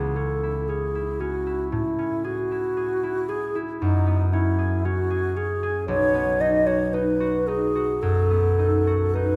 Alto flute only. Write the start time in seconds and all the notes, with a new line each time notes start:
Already playing: G#4
0.16 A4
0.68 G#4
1.20 F#4
1.72 E4
2.25 F#4
3.29 G#4
3.80 D#4
4.33 E4
4.85 F#4
5.37 G#4
5.88 C#5
6.41 D#5
6.67 C#5
6.93 B4
7.47 G#4
8.02 A4
9.14 B4